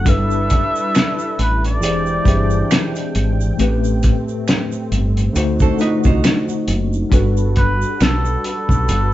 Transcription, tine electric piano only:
0.04 1.44 G3 medium
0.04 1.45 D4 medium
0.04 1.45 E4 medium
0.04 1.46 A4 medium
0.09 1.46 B4 medium
1.80 2.18 E3 medium
1.80 2.18 E4 medium
1.80 2.19 G4 medium
1.80 2.19 G#4 medium
1.80 2.20 C5 medium
1.85 2.20 D5 medium
2.25 3.31 E3 medium
2.25 3.32 E4 medium
2.25 3.32 G4 medium
2.25 3.33 G#4 medium
2.25 3.33 C5 medium
2.29 3.34 E5 medium
3.57 4.97 A2 medium
3.57 4.97 A3 medium
3.57 4.98 C4 medium
3.57 4.98 G4 medium
3.61 4.99 B4 medium
5.33 5.71 D3 medium
5.33 5.71 A3 medium
5.33 5.72 D#4 medium
5.33 5.72 F#4 medium
5.38 5.73 C5 loud
5.78 6.84 D3 medium
5.78 6.85 A3 medium
5.78 6.85 D#4 medium
5.78 5.87 F4 medium
5.82 6.86 D#5 medium
5.87 6.89 F#4 medium
7.10 8.50 G3 medium
7.10 8.50 D4 medium
7.10 8.51 F#4 medium
7.10 8.51 A4 medium
7.14 8.52 B4 medium

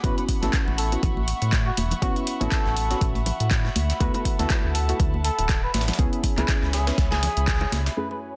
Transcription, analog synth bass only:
0.04 0.13 A1 loud
0.43 0.49 A1 medium
0.67 0.97 A1 medium
1.03 1.33 A1 loud
1.42 1.71 A2 medium
1.77 1.94 E1 medium
2.02 2.11 A1 loud
2.41 2.48 A1 medium
2.66 2.95 A1 medium
3.01 3.32 A1 loud
3.40 3.69 A2 medium
3.76 3.93 D2 medium
4.01 4.09 D2 loud
4.39 4.46 D2 medium
4.64 4.93 D2 medium
5.00 5.30 D2 loud
5.38 5.68 D1 medium
5.74 5.91 A1 medium
5.99 6.08 C#2 loud
6.38 6.44 C#2 medium
6.62 6.92 C#2 medium
6.98 7.29 C#2 medium
7.37 7.66 C#2 medium
7.72 7.89 C#2 medium

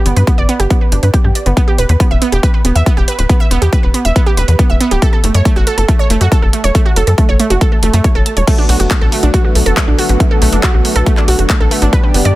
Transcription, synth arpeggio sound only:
0.06 0.13 B3 medium
0.16 0.24 B4 medium
0.27 0.35 B3 medium
0.38 0.45 D5 loud
0.49 0.53 B3 loud
0.60 0.67 G4 loud
0.70 0.78 B3 medium
0.81 0.89 B4 medium
0.92 0.96 D4 medium
1.03 1.07 B4 medium
1.14 1.21 G4 medium
1.24 1.29 G4 medium
1.35 1.46 D5 medium
1.46 1.53 B3 medium
1.57 1.61 B3 loud
1.68 1.75 G4 loud
1.78 1.83 B4 loud
1.89 1.97 B4 medium
2.00 2.07 B3 medium
2.11 2.18 E5 loud
2.22 2.26 B3 loud
2.32 2.40 G4 loud
2.43 2.48 B4 loud
2.54 2.61 B4 medium
2.65 2.72 B3 medium
2.76 2.83 E5 loud
2.86 2.91 B3 loud
2.97 3.04 G4 loud
3.08 3.12 B4 loud
3.19 3.26 B4 medium
3.29 3.37 B3 medium
3.40 3.48 E5 loud
3.51 3.55 B3 loud
3.62 3.69 G4 medium
3.72 3.77 B4 loud
3.83 3.91 B4 medium
3.94 4.01 B3 medium
4.05 4.12 E5 loud
4.16 4.20 B3 loud
4.26 4.34 G4 loud
4.37 4.42 B4 loud
4.48 4.55 B4 medium
4.59 4.66 B3 medium
4.70 4.77 E5 loud
4.80 4.85 B3 loud
4.91 4.99 G4 loud
5.02 5.07 A4 loud
5.13 5.20 A4 medium
5.24 5.31 A3 medium
5.34 5.42 C#5 medium
5.45 5.50 A3 loud
5.56 5.63 F#4 loud
5.67 5.71 A4 loud
5.78 5.85 A4 medium
5.88 5.96 A3 medium
5.99 6.07 C#5 loud
6.10 6.14 A3 loud
6.21 6.28 F#4 loud
6.32 6.36 A4 loud
6.42 6.50 A4 medium
6.53 6.61 A3 medium
6.64 6.71 C#5 loud
6.75 6.79 A3 loud
6.86 6.93 F#4 loud
6.96 7.01 A4 loud
7.07 7.15 A4 medium
7.18 7.25 A3 medium
7.29 7.36 C#5 loud
7.40 7.44 A3 loud
7.50 7.58 F#4 loud
7.61 7.66 A4 loud
7.72 7.79 A4 medium
7.83 7.90 A3 loud
7.94 8.01 A3 loud
8.04 8.15 C#5 medium
8.15 8.25 A4 loud
8.26 8.36 A5 medium
8.37 8.41 C#5 medium
8.48 8.52 A3 loud
8.58 8.66 D4 loud
8.69 8.73 F#4 loud
8.80 8.87 F#4 medium
8.91 8.98 A3 medium
9.01 9.09 A4 loud
9.12 9.17 A3 loud
9.23 9.30 D4 loud
9.34 9.38 F#4 loud
9.45 9.52 F#4 medium
9.55 9.63 A3 medium
9.66 9.73 A4 loud
9.77 9.81 A3 loud
9.88 9.95 D4 loud
9.99 10.03 F#4 loud
10.09 10.17 F#4 medium
10.20 10.27 A3 medium
10.31 10.38 A4 loud
10.42 10.46 A3 loud
10.53 10.60 D4 medium
10.63 10.68 F#4 loud
10.74 10.81 F#4 medium
10.85 10.92 A3 medium
10.96 11.03 A4 loud
11.07 11.11 A3 loud
11.17 11.25 D4 loud
11.28 11.32 F#4 loud
11.39 11.46 F#4 medium
11.50 11.57 A3 medium
11.60 11.68 A4 loud
11.71 11.76 A3 loud
11.82 11.89 D4 loud
11.93 11.97 B4 loud
12.04 12.11 B4 medium
12.14 12.22 B3 medium
12.25 12.32 D5 loud

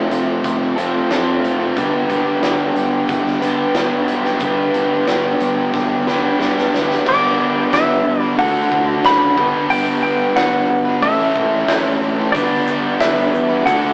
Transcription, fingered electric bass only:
0.11 0.39 F1 medium
0.45 1.00 F1 medium
1.11 1.38 F2 medium
1.43 1.71 F1 medium
1.77 2.04 G1 medium
2.10 2.37 G1 medium
2.42 2.70 G1 medium
2.75 3.03 G1 medium
3.09 3.64 G1 medium
3.74 4.02 G1 medium
4.06 4.35 B1 medium
4.41 4.68 G1 medium
4.75 5.02 G1 medium
5.08 5.35 G1 medium
5.40 5.68 G1 medium
5.74 6.29 G1 medium
6.39 6.67 G2 medium
6.73 7.00 G1 medium
7.07 7.62 G1 medium
7.73 8.00 G1 medium
8.05 8.33 G1 medium
8.38 8.66 D2 medium
8.72 8.99 D2 medium
9.05 9.38 F#1 medium
9.38 9.65 G1 medium
9.70 10.25 G1 medium
10.36 10.64 G1 medium
10.69 11.03 G1 medium
11.03 11.30 A1 medium
11.36 11.64 A1 medium
11.68 11.96 A1 medium
12.01 12.29 A1 loud
12.35 12.90 G1 medium
13.00 13.28 G1 medium
13.33 13.61 E2 medium
13.67 13.93 D2 medium

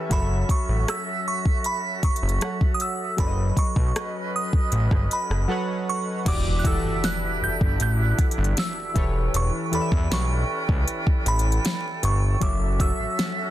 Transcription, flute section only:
0.00 2.92 C#4 medium
0.00 6.02 A4 medium
0.11 2.95 F#4 medium
0.11 3.16 E5 medium
3.18 6.23 C#4 medium
3.18 6.23 B4 medium
3.18 6.23 D#5 medium
6.26 8.93 D4 medium
6.26 8.93 E4 medium
6.26 8.93 B4 medium
6.26 8.71 E5 medium
8.96 12.17 C#4 medium
8.96 13.50 A4 medium
8.96 12.18 B4 medium
8.96 12.38 G5 medium
12.42 13.50 C#4 medium
12.42 13.50 F#4 medium
12.42 13.50 E5 medium

